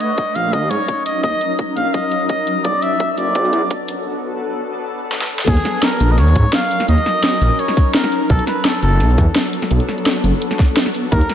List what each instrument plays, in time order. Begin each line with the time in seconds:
Already playing: ambient pad F#3 C#4 D#4 A#4
0.00 muted trumpet D#5, closed hi-hat
0.18 kick, closed hi-hat
0.35 detuned saw bass A#1, muted trumpet F5, closed hi-hat
0.53 detuned saw bass D#2, muted trumpet D#5, kick, closed hi-hat
0.70 detuned saw bass G#2, muted trumpet C#5, closed hi-hat
0.88 kick, closed hi-hat
1.06 muted trumpet D#5, closed hi-hat
1.23 detuned saw bass D#2, muted trumpet D#5, kick, closed hi-hat
1.41 closed hi-hat
1.59 kick, closed hi-hat
1.76 detuned saw bass A#1, muted trumpet F5, closed hi-hat
1.94 muted trumpet D#5, kick, closed hi-hat
2.12 closed hi-hat
2.29 muted trumpet D#5, kick, closed hi-hat
2.47 closed hi-hat
2.64 detuned saw bass B1, ambient pad B3 D4 A4, muted trumpet D5, kick, closed hi-hat
2.82 muted trumpet E5, closed hi-hat, shaker
3.00 kick, closed hi-hat
3.11 muted trumpet E5
3.18 detuned saw bass F#1, muted trumpet D5, closed hi-hat, shaker
3.35 detuned saw bass B1, kick, closed hi-hat
3.45 shaker
3.53 detuned saw bass E2, closed hi-hat, shaker
3.71 kick, closed hi-hat
3.88 closed hi-hat, shaker
5.12 snare
5.21 snare
5.39 snare
5.47 detuned saw bass D#2, ambient pad F#3 C#4 D#4 A#4, muted trumpet G#4, kick, closed hi-hat, crash
5.57 closed hi-hat
5.65 snare, closed hi-hat, shaker
5.83 muted trumpet A#4, snare, closed hi-hat
6.00 detuned saw bass A#1, closed hi-hat, shaker
6.12 muted trumpet D#5
6.18 detuned saw bass D#2, muted trumpet C#5, snare, closed hi-hat
6.27 shaker
6.35 detuned saw bass G#2, kick, closed hi-hat, shaker
6.53 muted trumpet F5, snare, closed hi-hat
6.71 closed hi-hat, shaker
6.80 snare
6.88 detuned saw bass D#2, muted trumpet D#5, closed hi-hat
6.98 closed hi-hat
7.06 snare, closed hi-hat, shaker
7.24 snare, closed hi-hat
7.41 detuned saw bass A#1, closed hi-hat, shaker
7.59 muted trumpet C#5, closed hi-hat
7.68 snare, shaker
7.77 kick, closed hi-hat, shaker
7.95 muted trumpet A#4, snare, closed hi-hat
8.04 snare
8.12 closed hi-hat, shaker
8.30 detuned saw bass B1, ambient pad B3 D4 A4, muted trumpet A4, kick, closed hi-hat
8.39 closed hi-hat
8.47 muted trumpet B4, snare, closed hi-hat, shaker
8.65 muted trumpet A4, snare, closed hi-hat
8.82 detuned saw bass F#1, muted trumpet A4, closed hi-hat, shaker
9.00 detuned saw bass B1, snare, closed hi-hat
9.10 shaker
9.18 detuned saw bass E2, kick, closed hi-hat, shaker
9.36 snare, closed hi-hat
9.53 closed hi-hat, shaker
9.62 snare
9.71 detuned saw bass B1, closed hi-hat
9.80 closed hi-hat
9.89 snare, closed hi-hat, shaker
9.98 closed hi-hat
10.06 snare, closed hi-hat
10.15 shaker
10.24 detuned saw bass F#1, closed hi-hat, shaker
10.42 closed hi-hat
10.51 snare, shaker
10.59 kick, snare, closed hi-hat, shaker
10.77 snare, closed hi-hat
10.86 snare
10.94 closed hi-hat, shaker
11.12 detuned saw bass D#2, muted trumpet A#4, kick, closed hi-hat
11.21 closed hi-hat
11.30 snare, closed hi-hat, shaker